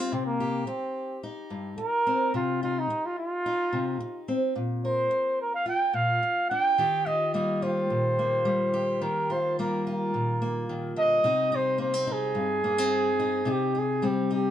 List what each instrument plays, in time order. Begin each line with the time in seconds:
Already playing: steel-string acoustic guitar D#4 G4, flugelhorn F4
0.00 steel-string acoustic guitar C4
0.12 steel-string acoustic guitar C3, flugelhorn C4
0.26 flugelhorn A#3
0.40 steel-string acoustic guitar G4
0.67 flugelhorn C4, muted steel-string acoustic guitar stroke
1.23 steel-string acoustic guitar D#4
1.50 steel-string acoustic guitar G2
1.78 flugelhorn A#4, muted steel-string acoustic guitar stroke
2.07 steel-string acoustic guitar C4
2.34 steel-string acoustic guitar C3, flugelhorn F4
2.63 steel-string acoustic guitar D#4, flugelhorn F4
2.79 flugelhorn D#4
2.90 muted steel-string acoustic guitar stroke
3.06 flugelhorn F4
3.19 flugelhorn F4
3.46 steel-string acoustic guitar D#4
3.73 steel-string acoustic guitar C3
4.00 muted steel-string acoustic guitar stroke
4.28 steel-string acoustic guitar C4
4.56 steel-string acoustic guitar A#2
4.85 steel-string acoustic guitar A#4, flugelhorn C5
5.11 muted steel-string acoustic guitar stroke
5.42 flugelhorn A#4
5.55 flugelhorn F5
5.66 steel-string acoustic guitar F4, flugelhorn G5
5.93 steel-string acoustic guitar A#2, flugelhorn F5
6.23 muted steel-string acoustic guitar stroke
6.50 steel-string acoustic guitar D4, flugelhorn G5
6.78 steel-string acoustic guitar D#3 G4
7.06 steel-string acoustic guitar F4, flugelhorn D#5
7.34 steel-string acoustic guitar G3 A#3, flugelhorn D#5
7.62 steel-string acoustic guitar F4, flugelhorn C5
7.90 steel-string acoustic guitar A#2
8.19 steel-string acoustic guitar A#3
8.45 steel-string acoustic guitar G3
8.74 steel-string acoustic guitar G4
9.02 steel-string acoustic guitar D#3, flugelhorn A#4
9.30 steel-string acoustic guitar F4, flugelhorn C5
9.59 steel-string acoustic guitar G3 A#3, flugelhorn A#4
9.87 steel-string acoustic guitar F4
9.91 flugelhorn A#4
10.14 steel-string acoustic guitar A#2
10.42 steel-string acoustic guitar A#3
10.69 steel-string acoustic guitar D#3
10.96 steel-string acoustic guitar D3, flugelhorn D#5
11.24 steel-string acoustic guitar C3 D#4
11.52 steel-string acoustic guitar D#4, flugelhorn C5
11.78 steel-string acoustic guitar A#3, flugelhorn C5
11.94 steel-string acoustic guitar C4
12.07 steel-string acoustic guitar D#4
12.12 flugelhorn G#4
12.35 steel-string acoustic guitar G2
12.64 steel-string acoustic guitar A#3
12.78 steel-string acoustic guitar C4
13.19 steel-string acoustic guitar D#4
13.45 steel-string acoustic guitar C3 D#4
13.51 flugelhorn G4
13.75 steel-string acoustic guitar D#4, flugelhorn G#4
14.02 steel-string acoustic guitar G3 C4
14.07 flugelhorn G4
14.31 steel-string acoustic guitar D#4, flugelhorn G4